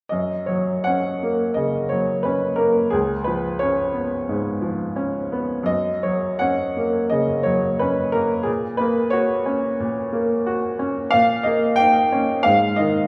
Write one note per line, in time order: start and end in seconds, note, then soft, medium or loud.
0.09 1.53 F#2 soft
0.09 0.48 D#5 medium
0.46 1.08 F#3 soft
0.46 0.85 C#5 soft
0.84 1.43 C#4 soft
0.84 1.55 F#5 medium
1.23 1.77 A#3 soft
1.54 2.11 C#3 soft
1.54 1.89 D#5 soft
1.89 2.46 F#3 soft
1.89 2.24 C#5 soft
2.23 2.80 C#4 soft
2.23 2.58 B4 soft
2.56 2.93 A#3 soft
2.56 2.92 A#4 soft
2.90 4.23 C#2 soft
2.90 3.26 G#4 medium
3.24 3.80 F3 soft
3.24 3.59 B4 medium
3.59 4.15 C#4 soft
3.59 5.68 C#5 medium
3.94 4.49 B3 soft
4.29 4.84 G#2 soft
4.62 5.18 F3 soft
4.96 5.54 C#4 soft
5.32 5.69 B3 soft
5.63 7.06 F#2 soft
5.63 6.04 D#5 medium
6.03 6.64 F#3 soft
6.03 6.42 C#5 soft
6.39 6.98 C#4 soft
6.39 7.11 F#5 medium
6.77 7.33 A#3 soft
7.10 7.67 C#3 soft
7.10 7.46 D#5 medium
7.43 8.00 F#3 soft
7.43 7.79 C#5 medium
7.79 8.35 C#4 soft
7.79 8.14 B4 soft
8.12 8.48 A#3 soft
8.12 8.47 A#4 medium
8.43 9.74 A#2 soft
8.43 8.79 G#4 medium
8.77 9.33 A#3 soft
8.77 9.12 B4 medium
9.10 9.66 F#4 soft
9.10 11.12 C#5 medium
9.46 9.99 C#4 soft
9.80 11.10 A#2 soft
10.13 10.66 A#3 soft
10.46 11.00 F#4 soft
10.79 11.13 C#4 soft
11.11 12.42 A#2 soft
11.11 11.45 F5 medium
11.43 11.99 A#3 soft
11.43 11.78 D#5 medium
11.76 12.32 D#4 soft
11.76 12.44 G5 medium
12.12 12.46 C#4 soft
12.43 13.07 G#2 soft
12.43 12.78 F5 medium
12.76 13.07 D#3 soft
12.76 13.07 D#5 medium